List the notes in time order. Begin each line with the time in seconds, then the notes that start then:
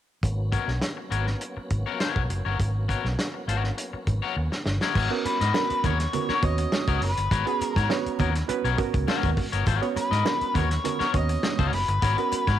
0.23 G#1 F#3 A#3 B3 C#4, kick, closed hi-hat
0.52 B3 F#4 A#4 C#5, kick, closed hi-hat
0.68 B1, snare
0.81 muted clean electric guitar stroke, snare, closed hi-hat
0.97 muted clean electric guitar stroke
1.11 G#1 B3 F#4 A#4 C#5, closed hi-hat
1.27 muted clean electric guitar stroke, snare
1.41 muted clean electric guitar stroke, closed hi-hat
1.57 muted clean electric guitar stroke, muted fingered electric bass stroke
1.70 G#1, kick, closed hi-hat
1.86 B3 F#4 A#4 C#5
2.00 B3 F#4 A#4 C#5, snare, closed hi-hat
2.16 B1, kick
2.30 F#1, muted clean electric guitar stroke, closed hi-hat
2.45 G1 B3 F#4 A#4 C#5
2.60 G#1, kick, closed hi-hat
2.89 B3 F#4 A#4 C#5, kick, closed hi-hat
3.05 B1, snare
3.19 muted clean electric guitar stroke, snare, closed hi-hat
3.34 muted clean electric guitar stroke
3.48 G#1 B3 F#4 A#4 C#5, closed hi-hat
3.63 muted clean electric guitar stroke, snare
3.77 muted clean electric guitar stroke, closed hi-hat
3.93 muted clean electric guitar stroke, muted fingered electric bass stroke
4.07 G#1, kick, closed hi-hat
4.22 B3 F#4 A#4 C#5
4.36 D#2, muted clean electric guitar stroke
4.52 muted clean electric guitar stroke, snare
4.66 G1, snare
4.81 B3 F#4 A#4 C#5, snare
4.95 G#1 B3 F#4 A#4 C#5, kick, crash, muted conga
5.10 B3 C#4 F#4 A#4, muted clean electric guitar stroke
5.25 B4, muted fingered electric bass stroke, muted clean electric guitar stroke, closed hi-hat, muted conga
5.41 G#2 B3 F#4 A#4 D#5, snare, closed hi-hat
5.54 B3 C#4 F#4 A#4, muted clean electric guitar stroke, snare, high conga
5.70 muted fingered electric bass stroke, closed hi-hat
5.84 D#2 B3 F#4 A#4 C#5, kick, closed hi-hat, low conga
5.99 muted clean electric guitar stroke, snare, closed hi-hat
6.13 B3 C#4 F#4 A#4, muted clean electric guitar stroke, closed hi-hat, muted conga, low conga
6.29 B3 F#4 A#4 C#5, muted fingered electric bass stroke, snare
6.42 D#2 B3 C#4 F#4 C#5 D#5, muted clean electric guitar stroke, kick, closed hi-hat
6.58 muted clean electric guitar stroke, closed hi-hat
6.72 muted clean electric guitar stroke, snare, high conga
6.88 C#2 B3 F#4 A#4 C#5, kick, closed hi-hat, high conga
7.02 F#1 B4, muted clean electric guitar stroke, open hi-hat
7.17 G1, muted clean electric guitar stroke, closed hi-hat
7.31 G#1 B3 F#4 A#4 C#5, kick, closed hi-hat, muted conga
7.46 B3 C#4 F#4 G#4, muted clean electric guitar stroke, closed hi-hat
7.61 A#4, muted fingered electric bass stroke, muted clean electric guitar stroke, closed hi-hat, muted conga
7.76 G#2 B3 F#4 A#4 C#5, kick, snare, closed hi-hat
7.89 B3 C#4 F#4 C#5, muted clean electric guitar stroke, snare, high conga
8.06 muted fingered electric bass stroke, closed hi-hat
8.19 D#2 B3 F#4 A#4 C#5, kick, closed hi-hat, low conga
8.35 muted clean electric guitar stroke, snare, closed hi-hat
8.48 B3 C#4 F#4 B4, muted fingered electric bass stroke, muted clean electric guitar stroke, closed hi-hat, muted conga
8.64 B1 B3 F#4 A#4 C#5, closed hi-hat
8.78 B3 C#4 F#4 A#4, muted clean electric guitar stroke, kick, closed hi-hat, muted conga
8.94 C#2, muted clean electric guitar stroke, kick, closed hi-hat
9.08 B3 F#4 A#4 C#5, muted fingered electric bass stroke, snare, high conga
9.23 D#2, kick, closed hi-hat, high conga
9.37 muted clean electric guitar stroke, kick, open hi-hat
9.52 G1 B3 F#4 A#4 C#5, closed hi-hat
9.66 G#1 B3 F#4 A#4 C#5, kick, closed hi-hat, muted conga
9.82 B3 C#4 F#4 C#5, muted clean electric guitar stroke, closed hi-hat
9.96 B4, muted clean electric guitar stroke, muted fingered electric bass stroke, closed hi-hat, muted conga
10.11 G#2 B3 F#4 A#4 D#5, snare, closed hi-hat
10.25 B3 C#4 F#4 A#4, muted clean electric guitar stroke, snare, high conga
10.41 muted fingered electric bass stroke, closed hi-hat
10.54 D#2 B3 F#4 A#4 C#5, kick, closed hi-hat, low conga
10.71 muted clean electric guitar stroke, snare, closed hi-hat
10.84 B3 C#4 F#4 A#4, muted clean electric guitar stroke, closed hi-hat, muted conga, low conga
10.99 B3 F#4 A#4 C#5, muted fingered electric bass stroke, snare, closed hi-hat
11.13 D#2 B3 C#4 F#4 C#5 D#5, muted clean electric guitar stroke, kick, closed hi-hat, muted conga
11.29 muted clean electric guitar stroke, closed hi-hat
11.43 muted clean electric guitar stroke, snare, high conga
11.59 C#2 B3 F#4 A#4 C#5, kick, closed hi-hat, high conga
11.72 F#1 B4, muted clean electric guitar stroke, open hi-hat
11.88 G1, muted clean electric guitar stroke, closed hi-hat
12.02 G#1 B3 F#4 A#4 C#5, kick, closed hi-hat, muted conga
12.18 B3 C#4 F#4 A#4, muted clean electric guitar stroke, closed hi-hat
12.32 muted clean electric guitar stroke, muted fingered electric bass stroke, closed hi-hat, muted conga
12.47 G#2 B3 F#4 A#4 C#5, kick, snare, closed hi-hat